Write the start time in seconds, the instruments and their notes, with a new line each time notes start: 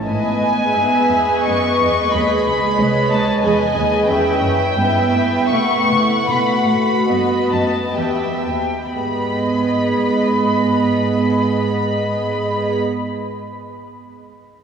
0.05 cello section G#2, viola section B3 B4, violin section B4 D#5 G#5
0.40 cello section A2
0.74 cello section G#2, violin section G#4 E5
1.11 cello section E2
1.45 cello section F#2, violin section D#5 C#6
1.80 cello section E2
2.12 cello section D#2, viola section G#3 B4, violin section G#4 B5
2.46 cello section C#2
2.78 cello section C2, viola section B4, violin section C#5 D#5
3.10 cello section C#2, violin section A5
3.43 cello section E2, viola section G#4, violin section B4 G#5
3.77 cello section D#2
4.09 cello section E2, viola section C#4 E4, violin section E5 G5
4.42 cello section F#2
4.78 cello section G2, viola section B3 E4, violin section B4 E5
5.14 cello section A2
5.51 cello section B2, viola section A3, violin section F#5 C#6
5.91 cello section C#3
6.28 cello section B2, viola section F#4, violin section B4 B5
6.68 cello section A2
7.09 cello section G2, viola section B3, violin section B4 D#5
7.51 cello section F#2, violin section A5
7.96 cello section E2, viola section B3 G4, violin section B4 E5 G5
8.45 cello section D#2
8.93 cello section G#2, viola section B3 G#4, violin section B4 D#5 B5